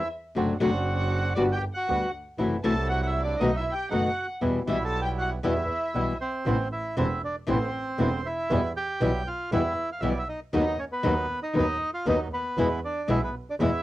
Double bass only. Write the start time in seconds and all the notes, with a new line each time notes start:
0.36 F#1
0.61 F#1
1.37 G1
1.88 D2
2.39 F#1
2.64 C2
3.40 B1
3.91 F#1
4.42 E2
4.67 B1
5.44 E2
5.95 B1
6.46 A1
6.98 E1
7.48 A1
7.99 E1
8.50 E2
9.01 B1
9.52 E2
10.02 B1
10.54 D#2
11.04 D#2
11.55 D#2
12.06 D#2
12.57 E2
13.08 B1
13.59 E2